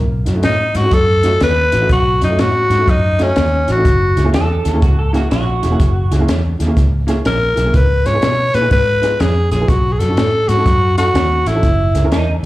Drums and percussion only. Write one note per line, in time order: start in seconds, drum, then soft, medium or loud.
0.26 snare soft
0.26 closed hi-hat medium
0.43 snare loud
0.43 closed hi-hat medium
0.75 snare soft
0.75 closed hi-hat medium
0.91 kick medium
0.91 snare soft
0.91 closed hi-hat medium
1.23 snare soft
1.23 closed hi-hat medium
1.40 snare medium
1.40 closed hi-hat medium
1.72 snare soft
1.72 closed hi-hat medium
1.89 kick loud
1.89 snare soft
1.89 closed hi-hat medium
2.21 snare soft
2.21 closed hi-hat medium
2.39 snare loud
2.39 closed hi-hat medium
2.70 snare soft
2.70 closed hi-hat medium
2.88 kick medium
2.88 snare soft
2.88 closed hi-hat medium
3.19 snare soft
3.19 closed hi-hat medium
3.36 snare loud
3.36 closed hi-hat medium
3.68 snare soft
3.68 closed hi-hat soft
3.85 kick medium
3.85 snare soft
3.85 closed hi-hat medium
4.17 snare soft
4.17 closed hi-hat soft
4.34 snare loud
4.34 closed hi-hat medium
4.65 snare soft
4.65 closed hi-hat medium
4.82 kick loud
4.82 snare soft
4.82 closed hi-hat medium
5.14 snare soft
5.14 closed hi-hat medium
5.31 snare loud
5.31 closed hi-hat medium
5.63 snare soft
5.63 closed hi-hat medium
5.80 kick loud
5.80 snare soft
5.80 closed hi-hat medium
6.12 snare soft
6.12 closed hi-hat medium
6.28 snare medium
6.28 closed hi-hat medium
6.60 snare soft
6.60 closed hi-hat medium
6.77 kick medium
6.77 snare soft
6.77 closed hi-hat medium
7.08 snare soft
7.08 closed hi-hat medium
7.25 snare medium
7.25 closed hi-hat medium
7.57 snare soft
7.57 closed hi-hat medium
7.74 kick loud
7.74 snare soft
7.74 closed hi-hat medium
8.06 snare soft
8.06 closed hi-hat medium
8.22 snare loud
8.22 closed hi-hat medium
8.54 snare soft
8.54 closed hi-hat medium
8.71 kick loud
8.71 snare soft
8.71 closed hi-hat medium
9.03 snare soft
9.03 closed hi-hat medium
9.20 snare loud
9.20 closed hi-hat medium
9.51 snare soft
9.51 closed hi-hat medium
9.68 kick loud
9.68 snare soft
9.68 closed hi-hat medium
10.00 snare soft
10.00 closed hi-hat medium
10.17 snare loud
10.17 closed hi-hat medium
10.49 snare soft
10.49 closed hi-hat medium
10.66 kick loud
10.66 snare soft
10.66 closed hi-hat medium
10.98 snare soft
10.98 closed hi-hat medium
11.15 snare loud
11.15 closed hi-hat medium
11.46 snare soft
11.46 closed hi-hat medium
11.63 kick loud
11.63 snare soft
11.63 closed hi-hat medium
11.95 snare soft
11.95 closed hi-hat medium
12.12 snare loud
12.12 closed hi-hat medium